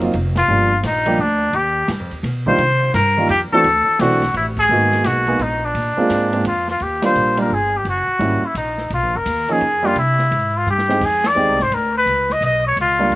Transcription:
Already playing: F#1
0.01 F#3 A#3 C4 D#4 F4, ride
0.14 F1, ride
0.36 F4, snare, ride
0.48 G1 F3 G3 A#3 D4 F4
0.83 A#1 D#4, snare, hi-hat pedal, ride
1.06 F3 G3 A#3 D4 G4, ride
1.18 D2 D4
1.53 D#2 G4, ride
1.88 G2, snare, hi-hat pedal, ride
2.00 F2
2.11 D#2, ride
2.23 B2, snare, ride
2.46 D#3 G3 A#3 D4 F4 C5, kick
2.58 C3, ride
2.94 G2 A#4, snare, hi-hat pedal, ride
3.17 D#3 G3 A#3 D4 F4
3.29 F2 G4, ride
3.52 E3 A3 C4 D4 F#4 A4, muted upright bass stroke
3.64 D2, ride
3.87 muted upright bass stroke
3.99 B1 E3 A3 C4 D4 F#4, snare, hi-hat pedal, ride
4.11 snare
4.22 snare, ride
4.34 A1 E4, ride
4.57 G#4, kick, crash
4.69 G#1 G#3 A#3 B3 D#4 F#4
4.92 snare
5.04 B1 F#4, snare, hi-hat pedal, ride
5.27 G#3 A#3 B3 D#4 G#4, ride
5.39 A#1 D#4, ride
5.65 D4
5.74 A#2, ride
5.97 G#3 A#3 C4 D4 F4, muted upright bass stroke
6.10 G#2, snare, hi-hat pedal, ride
6.32 G#3 A#3 C4 D4 F4, ride
6.44 F2 F4, ride
6.68 F4, snare
6.80 D#2 G4, ride
7.02 G3 A#3 D4 F4 C5, snare, ride
7.15 A#1, hi-hat pedal
7.37 G3 A#3 D4 F4 A#4, ride
7.50 G1 G#4
7.77 G4
7.85 F#1, ride
7.89 F#4
8.07 muted upright bass stroke
8.19 G#1 G3 A#3 C#4 E4, ride
8.42 E4, muted upright bass stroke
8.55 A#1 D#4, hi-hat pedal, ride
8.78 snare
8.90 B1 F4, ride
9.03 A#1
9.15 F#1 A#4
9.26 D#2, hi-hat pedal, ride
9.48 F3 A#3 C#4 D#4 G#4, ride
9.61 F2, ride
9.83 G3 A#3 D4 F4 G4, snare
9.96 C3 E4, ride
10.19 snare
10.31 G#2, ride
10.57 F4
10.66 G2 G4, hi-hat pedal
10.78 snare
10.88 G#3 C4 D#4 G4, snare
11.01 F2 G#4, kick, crash
11.24 D5, snare, ride
11.35 D#2 G#3 C4 D#4 G4, hi-hat pedal
11.48 C2
11.59 G#1 C5, snare
11.71 D2 A#4, ride
11.98 B4
12.06 C#2, ride
12.29 D#5, snare
12.41 B1, hi-hat pedal, ride
12.45 D#5
12.67 C#5
12.76 C#2, ride
12.81 F4
12.99 G3 A#3 D4 F4
13.11 D#2, ride

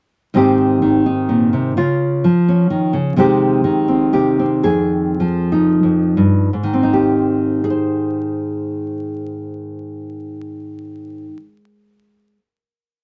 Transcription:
0.34 G#2 D#3 C4 D#4 G4
0.82 D#3
1.06 D#4
1.29 A#2
1.53 C3
1.77 C#3 F4
2.24 F3
2.48 C#4
2.70 D#3
2.93 C#3
3.16 C3 D#3 G#3 C4 G4
3.64 D#3
3.88 C4
4.13 C3 G4
4.39 C4
4.63 F2 G#4
5.20 F3
5.52 D#4
5.83 F2
6.17 G2
6.53 G#2
6.63 D#3
6.73 C4
6.83 D#4
6.93 G4
7.64 G#4
7.70 C5

